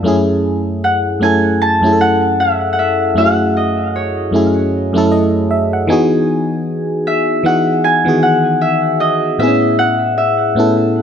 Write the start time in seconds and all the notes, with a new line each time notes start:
0.03 F#2 A3 C#4 E4
0.08 G#4
0.84 F#5
1.20 F#2 A3 C#4 E4 G#5
1.24 A4
1.62 A5
1.81 F#2 A3 C#4 E4
1.86 G#4
1.93 A4
2.01 F#5
2.40 E5
2.73 F#5
2.79 E5
3.15 F#2 A3 C#4 E4 F#5
3.19 F#4
3.26 G#4
3.57 D#5
3.96 C#5
4.31 F#2 A3 C#4 E4
4.36 G#4
4.93 F#2 A3 C#4 E4
4.98 A4
5.12 D#5
5.51 E5
5.73 F#5
5.87 E3 B3 D#4 F#4 G#5
5.92 G#4
7.07 E5
7.43 E3 B3 D#4 F#4 F#5
7.48 G#4
7.84 G#5
8.05 D#3 E3 B3 F#4
8.09 G#4
8.23 F#5
8.61 E5
9.00 D#5
9.38 A2 B3 C4 E4 E5
9.43 G#4
9.47 C#4
9.79 F#5
10.18 E5
10.55 A2 B3 C#4 E4
10.60 A4